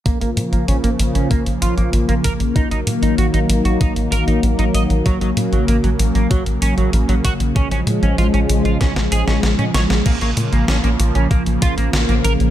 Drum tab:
CC |----------------|----------------|----------------|----------------|
HH |xxxxxxxxxxxxxxxx|xxxxxxxxxxxxxxxx|xxxxxxxxxxxxxxxx|xxxxxxxxxxxxxxxx|
SD |----------------|----------------|----------------|--------oo-oo-oo|
BD |o-------o-----o-|o-------o-------|o-------o-----o-|o-------o-------|

CC |x---------------|
HH |xxxxxxxxxxxxxxxx|
SD |----o-------o---|
BD |o-------o-o-----|